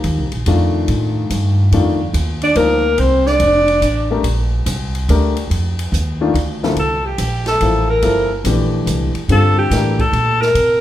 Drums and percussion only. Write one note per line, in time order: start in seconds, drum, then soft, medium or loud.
0.04 ride medium
0.32 ride soft
0.46 ride medium
0.88 ride medium
1.30 hi-hat pedal soft
1.30 ride medium
1.72 ride medium
2.14 hi-hat pedal soft
2.14 ride medium
2.42 ride soft
2.55 ride medium
2.98 ride medium
3.26 snare soft
3.40 ride medium
3.68 ride soft
3.82 hi-hat pedal medium
3.82 ride medium
4.24 ride medium
4.66 hi-hat pedal medium
4.66 ride medium
4.95 ride soft
5.09 ride medium
5.37 ride soft
5.51 ride medium
5.79 ride medium
5.93 hi-hat pedal medium
6.35 ride medium
6.63 snare soft
6.76 ride medium
7.18 hi-hat pedal medium
7.18 ride medium
7.46 snare soft
7.46 ride soft
7.61 ride medium
8.02 ride medium
8.45 hi-hat pedal medium
8.45 ride medium
8.87 hi-hat pedal medium
8.87 ride medium
9.15 ride soft
9.29 ride medium
9.71 snare soft
9.71 hi-hat pedal medium
9.71 ride medium
9.99 kick medium
9.99 ride soft
10.13 ride soft
10.41 snare soft
10.55 ride medium